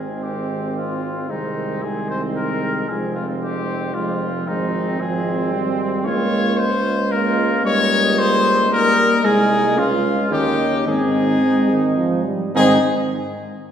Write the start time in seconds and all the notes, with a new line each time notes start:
Already playing: G#1 D#3 G#3 C4 G#4
0.23 G4
0.77 F4
1.29 C2 D#3 G#3 C4 D#4
1.82 D#3 G#3 C4 G#4
2.10 C5
2.37 A#4
2.89 F1 F3 G#3 C4 G#4
3.15 F4
3.42 G4
3.94 F3 G#3 C4 F4
4.47 G#1 F3 G#3 C4 D#4
4.99 F3 G#3 C4 G#4
5.52 G3
6.05 C#2 G#3 A#3 F4 C#5
6.58 C5
7.11 G#3 A#3 F4 A#4
7.63 G3 A#3 D#4 C#5
8.19 C5
8.70 G3 A#3 D#4 A#4
9.24 C2 G#3 D#4 G#4
9.76 C#2 G#3 C#4 F4
10.31 D#2 D#3 C#4 D#4 G4
10.87 G#2 D#3 C4 D#4 G#4
11.43 G#3
11.70 D#3
11.97 F3
12.25 G3
12.55 G#2 D#3 C4 D#4 G#4